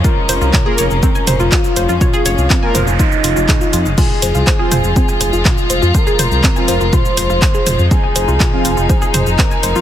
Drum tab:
CC |----------------|----------------|x---------------|----------------|
HH |--o---o---o---o-|--o---o---o---o-|--o---o---o---o-|--o---o---o---o-|
SH |x-xxx-xxxxxxxxxx|xxxxx-xxxxxxxxxx|x-xxx-xxxxxxxxxx|xxxxxxxxxxxxxxxx|
CP |----x-------x---|----x-------x---|----x-------x---|----x-------x---|
T2 |----o-----o-----|o-----o-----o---|o-----o-----o---|--o-----o-----o-|
BD |o---o---o---o---|o---o---o---o---|o---o---o---o---|o---o---o---o---|

CC |----------------|
HH |--o---o---o---o-|
SH |x-xxx-xxxxxxxxxx|
CP |----x-------x---|
T2 |----o-----o-----|
BD |o---o---o---o---|